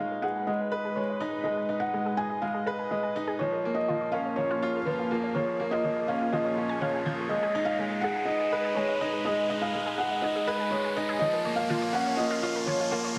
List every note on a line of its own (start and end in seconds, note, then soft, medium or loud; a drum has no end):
0.00 3.38 G#1 medium
0.00 0.47 G#3 medium
0.00 3.40 G#3 medium
0.00 1.20 D#4 medium
0.00 1.07 F4 medium
0.00 3.40 G#4 medium
0.00 3.40 B4 medium
0.00 1.05 C#5 medium
0.00 4.18 D#5 medium
0.00 0.24 F5 medium
0.00 riser medium
0.12 0.14 G#4 medium
0.22 0.46 G#4 medium
0.22 0.28 G#4 medium
0.22 0.48 F#5 medium
0.36 0.41 G#5 medium
0.47 0.62 G#3 medium
0.47 0.98 D#5 medium
0.47 0.53 D#5 medium
0.61 0.65 G#5 medium
0.72 0.75 G#4 medium
0.72 0.95 B4 medium
0.85 0.89 G#4 medium
0.95 1.20 G#3 medium
0.95 1.19 C#5 medium
0.95 1.02 G#5 medium
1.10 1.14 D#5 medium
1.20 1.44 D#4 medium
1.20 1.26 G#5 medium
1.34 1.36 G#4 medium
1.44 1.68 G#3 medium
1.44 1.50 G#4 medium
1.44 1.82 D#5 medium
1.57 1.62 G#5 medium
1.69 1.92 D#4 medium
1.69 1.74 D#5 medium
1.80 2.19 F#5 medium
1.80 1.87 G#5 medium
1.94 2.17 G#3 medium
1.94 1.97 G#4 medium
2.06 2.11 G#4 medium
2.17 2.42 G#4 medium
2.17 2.43 G#5 medium
2.17 2.23 G#5 medium
2.30 2.35 D#5 medium
2.42 2.56 G#3 medium
2.42 2.93 F5 medium
2.42 2.47 G#5 medium
2.54 2.58 G#4 medium
2.66 2.71 G#4 loud
2.66 2.90 B4 medium
2.79 2.84 G#5 medium
2.91 3.15 G#3 medium
2.91 2.96 D#5 medium
2.91 3.14 D#5 medium
3.03 3.08 G#5 medium
3.15 3.39 D#4 medium
3.15 3.19 G#4 medium
3.27 3.33 G#4 loud
3.39 5.33 A#1 medium
3.39 3.64 F3 medium
3.39 7.31 A#3 medium
3.39 3.77 C#5 medium
3.39 3.45 C#5 medium
3.52 3.57 A#4 medium
3.64 3.88 A#3 medium
3.64 3.69 C#5 medium
3.75 3.79 F4 medium
3.75 4.14 D#5 medium
3.88 4.13 F3 medium
3.88 3.93 F4 medium
3.96 13.16 G#4 medium
4.01 4.06 C#5 medium
4.12 4.37 C#4 medium
4.12 4.18 A#4 medium
4.12 4.38 F5 medium
4.12 6.14 F5 medium
4.25 4.30 C#5 medium
4.36 4.52 F3 medium
4.36 4.41 F4 medium
4.36 4.78 C#5 medium
4.51 4.55 F4 loud
4.62 4.86 F4 medium
4.62 4.67 C#5 medium
4.75 4.80 A#4 medium
4.80 4.86 C#5 medium
4.85 5.10 F3 medium
4.85 5.09 B4 medium
4.85 4.92 C#5 medium
4.99 5.02 F4 medium
5.11 5.34 A#3 medium
5.11 5.16 F4 medium
5.24 5.28 C#5 medium
5.35 7.28 A#1 medium
5.35 5.59 F3 medium
5.35 5.40 A#4 medium
5.35 5.73 C#5 medium
5.48 8.32 F4 medium
5.48 5.53 C#5 medium
5.60 5.83 A#3 medium
5.60 5.63 F4 medium
5.71 5.77 F4 loud
5.71 6.09 D#5 medium
5.84 6.08 F3 medium
5.84 5.89 C#5 medium
5.84 8.37 C#5 medium
5.97 6.01 A#4 medium
6.08 6.32 C#4 medium
6.08 6.13 C#5 medium
6.08 6.33 F5 medium
6.21 6.24 F4 medium
6.33 6.47 F3 medium
6.33 6.38 F4 medium
6.33 6.83 D#5 medium
6.45 6.50 C#5 medium
6.57 6.80 C#4 medium
6.57 6.60 F4 medium
6.69 6.72 G#5 medium
6.81 7.04 F3 medium
6.81 7.04 C#5 medium
6.81 6.86 F5 medium
6.94 6.99 G#4 medium
7.06 7.20 F3 medium
7.06 7.09 F4 medium
7.18 7.25 G#4 medium
7.29 11.18 G#1 medium
7.29 7.54 G#3 medium
7.29 11.21 G#3 medium
7.29 7.33 G#4 medium
7.29 7.68 D#5 medium
7.43 7.47 G#4 loud
7.55 7.78 D#4 loud
7.55 12.00 D#5 medium
7.55 7.60 G#5 medium
7.65 7.72 D#5 medium
7.65 8.04 F5 medium
7.78 8.02 G#3 medium
7.78 11.21 B4 medium
7.78 7.84 G#5 medium
7.91 7.94 G#4 medium
8.01 8.27 G#4 medium
8.01 8.09 G#4 loud
8.01 8.28 F#5 medium
8.16 8.21 G#5 medium
8.25 8.51 D#4 medium
8.25 8.77 D#5 medium
8.25 8.33 D#5 medium
8.40 8.45 G#5 medium
8.52 8.55 G#4 medium
8.52 8.76 B4 medium
8.65 8.69 G#4 loud
8.75 9.00 G#3 medium
8.75 8.99 C#5 medium
8.75 8.81 G#5 medium
8.89 8.94 D#5 medium
9.00 9.24 D#4 loud
9.00 9.06 G#5 medium
9.13 9.16 G#4 medium
9.25 9.49 G#3 medium
9.25 9.30 G#4 loud
9.25 9.63 D#5 medium
9.37 9.42 G#5 medium
9.50 9.73 D#4 loud
9.50 9.55 D#5 medium
9.62 10.00 F5 medium
9.62 9.67 G#5 medium
9.73 9.98 G#3 medium
9.73 9.77 G#4 medium
9.86 9.91 G#4 loud
9.98 10.22 G#4 medium
9.98 10.24 F#5 medium
9.98 10.03 G#5 medium
10.11 10.16 D#5 medium
10.22 10.46 D#4 medium
10.22 10.73 D#5 medium
10.22 10.28 G#5 medium
10.36 10.38 G#4 medium
10.47 10.52 G#4 loud
10.47 10.71 B4 loud
10.60 10.65 G#5 medium
10.71 10.95 G#3 medium
10.71 10.94 C#5 medium
10.71 10.77 D#5 medium
10.85 10.89 G#5 medium
10.97 11.20 D#4 loud
10.97 10.99 G#4 medium
11.09 11.13 G#4 loud
11.19 13.13 A#1 medium
11.19 11.44 F3 medium
11.19 13.16 A#3 medium
11.19 11.26 C#5 medium
11.19 11.58 D#5 medium
11.33 11.38 A#4 medium
11.45 11.68 A#3 loud
11.45 11.50 C#5 medium
11.56 11.61 F4 medium
11.56 11.94 F5 loud
11.64 13.16 F5 medium
11.70 11.93 F3 medium
11.70 11.74 F4 loud
11.82 11.87 C#5 medium
11.93 12.17 C#4 medium
11.93 11.99 A#4 medium
11.93 12.19 F#5 loud
12.06 12.11 C#5 medium
12.17 12.41 A#3 medium
12.17 12.21 F4 medium
12.17 12.68 D#5 loud
12.31 12.35 F4 loud
12.43 12.66 F4 loud
12.43 12.48 C#5 medium
12.56 12.60 A#4 medium
12.66 12.90 F3 medium
12.66 12.89 C#5 medium
12.66 12.72 C#5 medium
12.80 12.82 F4 medium
12.91 13.15 A#3 loud
12.91 12.97 F4 loud
13.04 13.09 C#5 medium